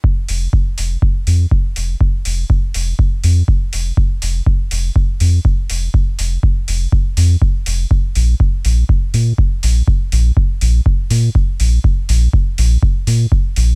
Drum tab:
HH |-o-o-o-o|-o-o-o-o|-o-o-o-o|-o-o-o-o|
BD |o-o-o-o-|o-o-o-o-|o-o-o-o-|o-o-o-o-|

HH |-o-o-o-o|-o-o-o-o|-o-o-o-o|
BD |o-o-o-o-|o-o-o-o-|o-o-o-o-|